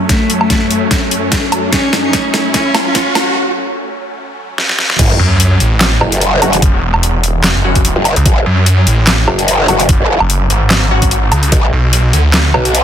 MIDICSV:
0, 0, Header, 1, 9, 480
1, 0, Start_track
1, 0, Key_signature, 3, "minor"
1, 0, Tempo, 408163
1, 109, Time_signature, 4, 2, 24, 8
1, 15099, End_track
2, 0, Start_track
2, 0, Title_t, "Cello"
2, 0, Program_c, 0, 42
2, 109, Note_on_c, 0, 57, 94
2, 430, Note_off_c, 0, 57, 0
2, 480, Note_on_c, 0, 57, 88
2, 893, Note_off_c, 0, 57, 0
2, 2029, Note_on_c, 0, 61, 94
2, 2350, Note_off_c, 0, 61, 0
2, 2400, Note_on_c, 0, 61, 87
2, 2813, Note_off_c, 0, 61, 0
2, 2989, Note_on_c, 0, 61, 95
2, 3310, Note_off_c, 0, 61, 0
2, 3361, Note_on_c, 0, 61, 84
2, 3774, Note_off_c, 0, 61, 0
2, 15099, End_track
3, 0, Start_track
3, 0, Title_t, "Synth stab"
3, 0, Program_c, 1, 62
3, 7549, Note_on_c, 1, 54, 72
3, 7549, Note_on_c, 1, 61, 64
3, 7549, Note_on_c, 1, 66, 81
3, 7633, Note_off_c, 1, 54, 0
3, 7633, Note_off_c, 1, 61, 0
3, 7633, Note_off_c, 1, 66, 0
3, 8989, Note_on_c, 1, 54, 77
3, 8989, Note_on_c, 1, 61, 74
3, 8989, Note_on_c, 1, 66, 84
3, 9123, Note_off_c, 1, 54, 0
3, 9123, Note_off_c, 1, 61, 0
3, 9123, Note_off_c, 1, 66, 0
3, 11389, Note_on_c, 1, 54, 74
3, 11389, Note_on_c, 1, 61, 65
3, 11389, Note_on_c, 1, 66, 80
3, 11473, Note_off_c, 1, 54, 0
3, 11473, Note_off_c, 1, 61, 0
3, 11473, Note_off_c, 1, 66, 0
3, 12828, Note_on_c, 1, 54, 79
3, 12828, Note_on_c, 1, 61, 75
3, 12828, Note_on_c, 1, 66, 86
3, 12963, Note_off_c, 1, 54, 0
3, 12963, Note_off_c, 1, 61, 0
3, 12963, Note_off_c, 1, 66, 0
3, 15099, End_track
4, 0, Start_track
4, 0, Title_t, "Supersaw synth"
4, 0, Program_c, 2, 81
4, 0, Note_on_c, 2, 42, 80
4, 0, Note_on_c, 2, 54, 73
4, 0, Note_on_c, 2, 57, 74
4, 0, Note_on_c, 2, 61, 89
4, 5822, Note_off_c, 2, 42, 0
4, 5822, Note_off_c, 2, 54, 0
4, 5822, Note_off_c, 2, 57, 0
4, 5822, Note_off_c, 2, 61, 0
4, 15099, End_track
5, 0, Start_track
5, 0, Title_t, "Detuned saw bass"
5, 0, Program_c, 3, 39
5, 6109, Note_on_c, 3, 42, 98
5, 6571, Note_off_c, 3, 42, 0
5, 6589, Note_on_c, 3, 33, 98
5, 7051, Note_off_c, 3, 33, 0
5, 7789, Note_on_c, 3, 30, 102
5, 7899, Note_off_c, 3, 30, 0
5, 7920, Note_on_c, 3, 28, 95
5, 8859, Note_off_c, 3, 28, 0
5, 8880, Note_on_c, 3, 30, 104
5, 9339, Note_off_c, 3, 30, 0
5, 9600, Note_on_c, 3, 37, 97
5, 9692, Note_off_c, 3, 37, 0
5, 9949, Note_on_c, 3, 42, 100
5, 10412, Note_off_c, 3, 42, 0
5, 10429, Note_on_c, 3, 33, 98
5, 10892, Note_off_c, 3, 33, 0
5, 11629, Note_on_c, 3, 30, 100
5, 11739, Note_off_c, 3, 30, 0
5, 12000, Note_on_c, 3, 30, 99
5, 12331, Note_off_c, 3, 30, 0
5, 12349, Note_on_c, 3, 32, 99
5, 13292, Note_off_c, 3, 32, 0
5, 13309, Note_on_c, 3, 37, 98
5, 13532, Note_off_c, 3, 37, 0
5, 13788, Note_on_c, 3, 35, 95
5, 14251, Note_off_c, 3, 35, 0
5, 14268, Note_on_c, 3, 38, 100
5, 14731, Note_off_c, 3, 38, 0
5, 15099, End_track
6, 0, Start_track
6, 0, Title_t, "Wobble bass"
6, 0, Program_c, 4, 39
6, 5869, Note_on_c, 4, 30, 93
6, 6092, Note_off_c, 4, 30, 0
6, 7069, Note_on_c, 4, 30, 99
6, 7532, Note_off_c, 4, 30, 0
6, 7549, Note_on_c, 4, 30, 96
6, 7772, Note_off_c, 4, 30, 0
6, 9360, Note_on_c, 4, 30, 99
6, 9579, Note_off_c, 4, 30, 0
6, 9709, Note_on_c, 4, 30, 97
6, 9932, Note_off_c, 4, 30, 0
6, 10909, Note_on_c, 4, 30, 99
6, 11372, Note_off_c, 4, 30, 0
6, 11389, Note_on_c, 4, 30, 98
6, 11612, Note_off_c, 4, 30, 0
6, 11760, Note_on_c, 4, 30, 100
6, 11979, Note_off_c, 4, 30, 0
6, 13549, Note_on_c, 4, 35, 100
6, 13772, Note_off_c, 4, 35, 0
6, 14749, Note_on_c, 4, 35, 100
6, 15099, Note_off_c, 4, 35, 0
6, 15099, End_track
7, 0, Start_track
7, 0, Title_t, "Riser"
7, 0, Program_c, 5, 103
7, 0, Note_on_c, 5, 60, 76
7, 3949, Note_off_c, 5, 60, 0
7, 15099, End_track
8, 0, Start_track
8, 0, Title_t, "Sub drop"
8, 0, Program_c, 6, 103
8, 5869, Note_on_c, 6, 60, 75
8, 7789, Note_off_c, 6, 60, 0
8, 15099, End_track
9, 0, Start_track
9, 0, Title_t, "Drums"
9, 109, Note_on_c, 9, 36, 93
9, 109, Note_on_c, 9, 38, 57
9, 109, Note_on_c, 9, 42, 77
9, 227, Note_off_c, 9, 36, 0
9, 227, Note_off_c, 9, 38, 0
9, 227, Note_off_c, 9, 42, 0
9, 349, Note_on_c, 9, 42, 50
9, 467, Note_off_c, 9, 42, 0
9, 480, Note_on_c, 9, 77, 52
9, 589, Note_on_c, 9, 36, 94
9, 589, Note_on_c, 9, 38, 65
9, 589, Note_on_c, 9, 42, 76
9, 598, Note_off_c, 9, 77, 0
9, 706, Note_off_c, 9, 38, 0
9, 706, Note_off_c, 9, 42, 0
9, 707, Note_off_c, 9, 36, 0
9, 829, Note_on_c, 9, 42, 52
9, 947, Note_off_c, 9, 42, 0
9, 1069, Note_on_c, 9, 36, 100
9, 1069, Note_on_c, 9, 38, 66
9, 1069, Note_on_c, 9, 42, 78
9, 1187, Note_off_c, 9, 36, 0
9, 1187, Note_off_c, 9, 38, 0
9, 1187, Note_off_c, 9, 42, 0
9, 1309, Note_on_c, 9, 42, 57
9, 1427, Note_off_c, 9, 42, 0
9, 1549, Note_on_c, 9, 36, 91
9, 1549, Note_on_c, 9, 38, 69
9, 1549, Note_on_c, 9, 42, 79
9, 1667, Note_off_c, 9, 36, 0
9, 1667, Note_off_c, 9, 38, 0
9, 1667, Note_off_c, 9, 42, 0
9, 1789, Note_on_c, 9, 42, 54
9, 1789, Note_on_c, 9, 77, 51
9, 1907, Note_off_c, 9, 42, 0
9, 1907, Note_off_c, 9, 77, 0
9, 2029, Note_on_c, 9, 36, 94
9, 2029, Note_on_c, 9, 38, 73
9, 2029, Note_on_c, 9, 42, 77
9, 2147, Note_off_c, 9, 36, 0
9, 2147, Note_off_c, 9, 38, 0
9, 2147, Note_off_c, 9, 42, 0
9, 2269, Note_on_c, 9, 38, 74
9, 2269, Note_on_c, 9, 42, 47
9, 2386, Note_off_c, 9, 38, 0
9, 2386, Note_off_c, 9, 42, 0
9, 2509, Note_on_c, 9, 36, 94
9, 2509, Note_on_c, 9, 38, 80
9, 2509, Note_on_c, 9, 42, 75
9, 2626, Note_off_c, 9, 38, 0
9, 2626, Note_off_c, 9, 42, 0
9, 2627, Note_off_c, 9, 36, 0
9, 2749, Note_on_c, 9, 38, 80
9, 2749, Note_on_c, 9, 42, 53
9, 2867, Note_off_c, 9, 38, 0
9, 2867, Note_off_c, 9, 42, 0
9, 2989, Note_on_c, 9, 36, 102
9, 2989, Note_on_c, 9, 38, 83
9, 2989, Note_on_c, 9, 42, 76
9, 3106, Note_off_c, 9, 38, 0
9, 3106, Note_off_c, 9, 42, 0
9, 3107, Note_off_c, 9, 36, 0
9, 3229, Note_on_c, 9, 38, 92
9, 3229, Note_on_c, 9, 42, 51
9, 3229, Note_on_c, 9, 77, 59
9, 3346, Note_off_c, 9, 38, 0
9, 3346, Note_off_c, 9, 42, 0
9, 3346, Note_off_c, 9, 77, 0
9, 3468, Note_on_c, 9, 38, 86
9, 3468, Note_on_c, 9, 42, 75
9, 3469, Note_on_c, 9, 36, 96
9, 3586, Note_off_c, 9, 38, 0
9, 3586, Note_off_c, 9, 42, 0
9, 3587, Note_off_c, 9, 36, 0
9, 3709, Note_on_c, 9, 38, 91
9, 3709, Note_on_c, 9, 42, 53
9, 3709, Note_on_c, 9, 77, 53
9, 3826, Note_off_c, 9, 38, 0
9, 3826, Note_off_c, 9, 42, 0
9, 3826, Note_off_c, 9, 77, 0
9, 5389, Note_on_c, 9, 38, 63
9, 5506, Note_off_c, 9, 38, 0
9, 5520, Note_on_c, 9, 38, 63
9, 5629, Note_off_c, 9, 38, 0
9, 5629, Note_on_c, 9, 38, 84
9, 5746, Note_off_c, 9, 38, 0
9, 5760, Note_on_c, 9, 38, 86
9, 5869, Note_on_c, 9, 36, 118
9, 5869, Note_on_c, 9, 42, 87
9, 5869, Note_on_c, 9, 49, 110
9, 5878, Note_off_c, 9, 38, 0
9, 5987, Note_off_c, 9, 36, 0
9, 5987, Note_off_c, 9, 42, 0
9, 5987, Note_off_c, 9, 49, 0
9, 6349, Note_on_c, 9, 42, 82
9, 6466, Note_off_c, 9, 42, 0
9, 6589, Note_on_c, 9, 42, 54
9, 6707, Note_off_c, 9, 42, 0
9, 6829, Note_on_c, 9, 38, 120
9, 6829, Note_on_c, 9, 39, 88
9, 6829, Note_on_c, 9, 42, 85
9, 6947, Note_off_c, 9, 38, 0
9, 6947, Note_off_c, 9, 39, 0
9, 6947, Note_off_c, 9, 42, 0
9, 7069, Note_on_c, 9, 77, 64
9, 7186, Note_off_c, 9, 77, 0
9, 7200, Note_on_c, 9, 42, 60
9, 7309, Note_off_c, 9, 42, 0
9, 7309, Note_on_c, 9, 42, 82
9, 7426, Note_off_c, 9, 42, 0
9, 7549, Note_on_c, 9, 42, 56
9, 7549, Note_on_c, 9, 77, 51
9, 7666, Note_off_c, 9, 42, 0
9, 7666, Note_off_c, 9, 77, 0
9, 7680, Note_on_c, 9, 42, 53
9, 7789, Note_off_c, 9, 42, 0
9, 7789, Note_on_c, 9, 36, 127
9, 7789, Note_on_c, 9, 42, 83
9, 7906, Note_off_c, 9, 36, 0
9, 7906, Note_off_c, 9, 42, 0
9, 8159, Note_on_c, 9, 77, 55
9, 8268, Note_on_c, 9, 42, 86
9, 8277, Note_off_c, 9, 77, 0
9, 8386, Note_off_c, 9, 42, 0
9, 8509, Note_on_c, 9, 42, 52
9, 8626, Note_off_c, 9, 42, 0
9, 8749, Note_on_c, 9, 38, 123
9, 8749, Note_on_c, 9, 39, 92
9, 8749, Note_on_c, 9, 42, 82
9, 8866, Note_off_c, 9, 38, 0
9, 8866, Note_off_c, 9, 39, 0
9, 8866, Note_off_c, 9, 42, 0
9, 9120, Note_on_c, 9, 36, 66
9, 9120, Note_on_c, 9, 42, 53
9, 9229, Note_off_c, 9, 42, 0
9, 9229, Note_on_c, 9, 42, 80
9, 9237, Note_off_c, 9, 36, 0
9, 9346, Note_off_c, 9, 42, 0
9, 9469, Note_on_c, 9, 42, 53
9, 9469, Note_on_c, 9, 77, 50
9, 9586, Note_off_c, 9, 42, 0
9, 9586, Note_off_c, 9, 77, 0
9, 9600, Note_on_c, 9, 42, 54
9, 9709, Note_off_c, 9, 42, 0
9, 9709, Note_on_c, 9, 36, 121
9, 9709, Note_on_c, 9, 42, 78
9, 9827, Note_off_c, 9, 36, 0
9, 9827, Note_off_c, 9, 42, 0
9, 10189, Note_on_c, 9, 42, 83
9, 10306, Note_off_c, 9, 42, 0
9, 10429, Note_on_c, 9, 42, 54
9, 10546, Note_off_c, 9, 42, 0
9, 10669, Note_on_c, 9, 38, 124
9, 10669, Note_on_c, 9, 39, 95
9, 10669, Note_on_c, 9, 42, 75
9, 10787, Note_off_c, 9, 38, 0
9, 10787, Note_off_c, 9, 39, 0
9, 10787, Note_off_c, 9, 42, 0
9, 10909, Note_on_c, 9, 77, 62
9, 11027, Note_off_c, 9, 77, 0
9, 11040, Note_on_c, 9, 42, 55
9, 11149, Note_off_c, 9, 42, 0
9, 11149, Note_on_c, 9, 42, 79
9, 11266, Note_off_c, 9, 42, 0
9, 11389, Note_on_c, 9, 42, 53
9, 11389, Note_on_c, 9, 77, 49
9, 11506, Note_off_c, 9, 42, 0
9, 11506, Note_off_c, 9, 77, 0
9, 11520, Note_on_c, 9, 42, 50
9, 11629, Note_off_c, 9, 42, 0
9, 11629, Note_on_c, 9, 36, 122
9, 11629, Note_on_c, 9, 42, 79
9, 11746, Note_off_c, 9, 42, 0
9, 11747, Note_off_c, 9, 36, 0
9, 12000, Note_on_c, 9, 77, 60
9, 12109, Note_on_c, 9, 42, 77
9, 12117, Note_off_c, 9, 77, 0
9, 12226, Note_off_c, 9, 42, 0
9, 12349, Note_on_c, 9, 42, 50
9, 12466, Note_off_c, 9, 42, 0
9, 12589, Note_on_c, 9, 38, 122
9, 12589, Note_on_c, 9, 39, 88
9, 12589, Note_on_c, 9, 42, 73
9, 12706, Note_off_c, 9, 38, 0
9, 12706, Note_off_c, 9, 39, 0
9, 12706, Note_off_c, 9, 42, 0
9, 12960, Note_on_c, 9, 36, 64
9, 12960, Note_on_c, 9, 42, 52
9, 13068, Note_off_c, 9, 42, 0
9, 13068, Note_on_c, 9, 42, 77
9, 13077, Note_off_c, 9, 36, 0
9, 13186, Note_off_c, 9, 42, 0
9, 13308, Note_on_c, 9, 42, 51
9, 13308, Note_on_c, 9, 77, 52
9, 13426, Note_off_c, 9, 42, 0
9, 13426, Note_off_c, 9, 77, 0
9, 13439, Note_on_c, 9, 42, 48
9, 13548, Note_off_c, 9, 42, 0
9, 13548, Note_on_c, 9, 42, 77
9, 13549, Note_on_c, 9, 36, 113
9, 13666, Note_off_c, 9, 36, 0
9, 13666, Note_off_c, 9, 42, 0
9, 14028, Note_on_c, 9, 42, 75
9, 14146, Note_off_c, 9, 42, 0
9, 14268, Note_on_c, 9, 42, 51
9, 14386, Note_off_c, 9, 42, 0
9, 14508, Note_on_c, 9, 38, 116
9, 14508, Note_on_c, 9, 39, 85
9, 14508, Note_on_c, 9, 42, 78
9, 14626, Note_off_c, 9, 38, 0
9, 14626, Note_off_c, 9, 39, 0
9, 14626, Note_off_c, 9, 42, 0
9, 14748, Note_on_c, 9, 77, 67
9, 14866, Note_off_c, 9, 77, 0
9, 14880, Note_on_c, 9, 42, 52
9, 14989, Note_off_c, 9, 42, 0
9, 14989, Note_on_c, 9, 42, 79
9, 15099, Note_off_c, 9, 42, 0
9, 15099, End_track
0, 0, End_of_file